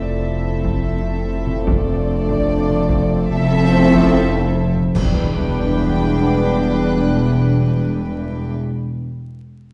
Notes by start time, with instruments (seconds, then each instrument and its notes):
Already playing: sub bass F1, double bass section F1, cello section F2, trombone section C3 F3, french horn section A3 E4, viola section C4, violin section A4 E5
0.02 grand piano D5
0.65 taiko
1.47 taiko mid
1.66 french horn section D4, violin section D5, taiko
2.29 taiko
2.70 taiko mid
2.90 taiko
3.30 sub bass F1, double bass section F1, cello section F2, trombone section C3 F3, french horn section A3 E4, viola section C4, violin section A4 E5
3.73 grand piano C5
3.93 taiko
4.76 taiko mid
4.94 double bass section E1, sub bass E1, cello section E2, trombone section B2 G3, french horn section B3 D4, viola section D4, violin section B4 G5 B5, concert bass drum, crash, impact
5.79 violin section D6
6.61 violin section F#6
7.30 violin section D#6